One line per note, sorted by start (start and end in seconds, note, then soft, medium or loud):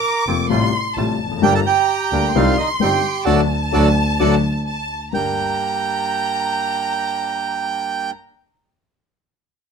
0.00 0.24 A#4 medium
0.00 0.24 A#5 medium
0.00 0.50 D6 medium
0.27 0.46 F1 medium
0.27 0.48 F1 medium
0.27 0.48 F2 medium
0.27 0.47 C3 soft
0.27 0.47 F3 medium
0.27 0.46 A#3 soft
0.27 0.47 A#3 soft
0.27 0.47 C4 soft
0.27 0.47 F4 medium
0.27 0.48 F4 medium
0.49 0.69 A1 medium
0.49 0.69 A2 medium
0.49 0.69 C3 medium
0.49 0.69 G3 medium
0.49 0.69 A3 medium
0.49 0.70 A3 medium
0.49 0.69 F4 medium
0.49 0.70 F4 medium
0.49 0.93 C6 medium
0.96 1.15 A1 medium
0.96 1.16 A1 medium
0.96 1.16 A2 medium
0.96 1.16 C3 soft
0.96 1.15 G3 soft
0.96 1.16 G3 soft
0.96 1.16 A3 soft
0.96 1.16 F4 soft
0.96 1.17 F4 soft
0.96 1.42 A5 medium
1.19 1.42 F1 medium
1.26 1.31 E2 medium
1.31 1.37 F2 medium
1.37 1.43 F#2 medium
1.42 1.62 G1 medium
1.42 1.62 G2 medium
1.42 1.62 D3 medium
1.42 1.61 G3 medium
1.42 1.62 G3 medium
1.42 1.62 A#3 medium
1.42 1.62 D4 medium
1.42 1.62 G4 medium
1.42 1.54 G4 medium
1.42 1.53 G5 loud
1.42 2.34 A#5 medium
1.55 1.60 A4 medium
1.55 1.60 A5 loud
1.66 2.32 G4 medium
1.66 2.37 G5 loud
2.11 2.31 D2 medium
2.11 2.31 D3 medium
2.11 2.31 G3 medium
2.11 2.32 G3 medium
2.11 2.31 A#3 medium
2.11 2.32 A#3 soft
2.11 2.31 D4 medium
2.11 2.32 G4 medium
2.33 2.54 C2 medium
2.33 2.55 C2 medium
2.33 2.54 C3 medium
2.33 2.54 D#3 medium
2.33 2.54 G3 medium
2.33 2.54 C4 medium
2.33 2.54 D#4 medium
2.33 2.57 F4 medium
2.33 2.55 G4 medium
2.33 2.57 F5 medium
2.33 3.26 C6 medium
2.57 2.69 D#4 medium
2.57 2.68 D#5 medium
2.80 3.00 G1 medium
2.80 3.00 G2 medium
2.80 3.00 D#3 soft
2.80 3.00 G3 soft
2.80 3.00 C4 soft
2.80 3.00 D#4 soft
2.80 3.00 G4 medium
2.80 3.24 G5 loud
2.84 3.25 G4 medium
3.25 3.43 D2 medium
3.25 3.41 D3 medium
3.25 3.42 F#3 medium
3.25 3.42 A3 medium
3.25 3.42 A3 loud
3.25 3.42 D4 medium
3.25 3.40 F#4 loud
3.25 3.41 A4 loud
3.25 3.41 D5 loud
3.25 4.63 A5 medium
3.72 3.91 D2 loud
3.72 3.88 D3 medium
3.72 3.88 F#3 medium
3.72 3.89 F#3 loud
3.72 3.88 A3 medium
3.72 3.89 A3 medium
3.72 3.89 D4 medium
3.72 3.89 F#4 loud
3.72 3.88 A4 loud
3.72 3.88 D5 loud
4.20 4.38 D2 medium
4.20 4.35 D3 medium
4.20 4.35 F#3 medium
4.20 4.35 F#3 loud
4.20 4.36 A3 loud
4.20 4.36 A3 medium
4.20 4.35 D4 medium
4.20 4.35 F#4 medium
4.20 4.35 A4 loud
4.20 4.35 D5 loud
4.67 5.11 A5 medium
5.13 5.34 G1 medium
5.13 8.09 G2 soft
5.13 8.12 G3 medium
5.13 8.11 A#3 soft
5.13 8.10 D4 soft
5.13 8.12 D4 medium
5.13 8.10 G4 soft
5.13 8.10 A#4 medium
5.13 8.11 G5 loud
5.13 8.10 A#5 medium